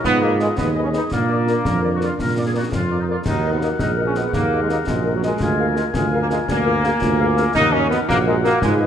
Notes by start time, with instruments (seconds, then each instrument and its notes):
0.04 tuba G#2, trombone section B3, euphonium F4, woodwind section G#4 D#5, concert bass drum, snare
0.22 trombone section A#3, french horn section G#4 B4, trumpet section D#5
0.40 trombone section G#3, french horn section G#4 B4, trumpet section D#5, snare
0.57 tuba D#2, trombone section B3, euphonium D#4, woodwind section G#4 D#5, concert bass drum, snare
0.75 french horn section G#4 B4, trumpet section D#5
0.83 trombone section C#4
0.93 trombone section D#4, french horn section G#4 B4, trumpet section D#5, snare
1.12 tuba A#2, trombone section A#3, euphonium D4, woodwind section A#4 D5, concert bass drum, snare
1.29 french horn section F4 A#4, trumpet section D5
1.46 french horn section F4 A#4, trumpet section D5, snare
1.65 tuba F2, woodwind section A#4, concert bass drum, snare
1.81 french horn section F4 A#4, trumpet section D5
1.95 french horn section F4, woodwind section F#4
1.99 french horn section A#4, trumpet section D5, snare
2.04 woodwind section F4
2.19 tuba A#2, woodwind section A#4, concert bass drum, snare
2.36 french horn section F4 A#4, trumpet section D5
2.47 woodwind section G#4
2.54 french horn section F4 A#4, woodwind section F#4, trumpet section D5
2.72 tuba F2, woodwind section F4, concert bass drum, snare
2.90 french horn section F4 A#4, trumpet section D5
3.00 woodwind section D#4
3.08 french horn section F4 A#4, woodwind section F4, trumpet section D5
3.26 tuba D#2, trombone section D#4, euphonium F#4, woodwind section A#4 F#5, concert bass drum, snare, crash
3.44 french horn section F#4 A#4, trumpet section D#5
3.52 trombone section B3
3.60 trombone section A#3, french horn section F#4 A#4, trumpet section D#5, snare
3.79 tuba A#1, trombone section D#4, euphonium G#4, woodwind section A#4 F#5, concert bass drum, snare
3.97 french horn section F#4 A#4, trumpet section D#5
4.07 trombone section C#4
4.15 trombone section B3, french horn section F#4 A#4, trumpet section D#5, snare
4.33 tuba D#2, trombone section A#3, woodwind section A#4 F#5, concert bass drum, snare
4.51 french horn section F#4 A#4, trumpet section D#5
4.62 trombone section G#3
4.69 trombone section A#3, french horn section F#4 A#4, trumpet section D#5, snare
4.87 tuba A#1, trombone section G#3, euphonium F#4, concert bass drum, snare
5.05 french horn section F#4 A#4, trumpet section D#5
5.15 trombone section F#3
5.23 trombone section G#3, french horn section F#4 A#4, trumpet section D#5, snare
5.40 tuba D2, euphonium F4, woodwind section A#4 G#5, concert bass drum, snare
5.59 french horn section G#4 A#4, trumpet section F5
5.68 trombone section A#3
5.76 trombone section G#3, french horn section G#4 A#4, trumpet section F5, snare
5.94 tuba D2, trombone section G#3, euphonium F4, woodwind section A#4 G#5, concert bass drum, snare
6.12 french horn section G#4 A#4, trumpet section F5
6.22 trombone section A#3
6.29 trombone section G#3, french horn section G#4 A#4, trumpet section F5, snare
6.47 tuba D2, trombone section A#3, euphonium D4, woodwind section A#4 G#5, concert bass drum, snare
6.65 euphonium F4, french horn section G#4 A#4, trumpet section F5
6.83 euphonium F#4, french horn section G#4 A#4, trumpet section F5, snare
7.01 tuba D2, euphonium F4, concert bass drum, snare
7.19 french horn section G#4 A#4, trumpet section F5
7.37 french horn section G#4 A#4, trumpet section F5, snare
7.55 tuba D#2, trombone section D#4, euphonium D#4, woodwind section A#4 F#5, concert bass drum, snare, crash
7.72 trombone section C#4, french horn section F#4 A#4, trumpet section D#5
7.90 trombone section B3, french horn section F#4 A#4, trumpet section D#5, snare
8.08 tuba A#1, trombone section A#3, euphonium F#4, woodwind section A#4 F#5, concert bass drum, snare
8.26 trombone section G#3, french horn section F#4 A#4, trumpet section D#5
8.44 trombone section A#3, french horn section F#4 A#4, trumpet section D#5, snare
8.62 tuba G#2, trombone section G#3, euphonium F4, woodwind section B4 G#5, concert bass drum, snare
8.79 french horn section G#4 B4, trumpet section D#5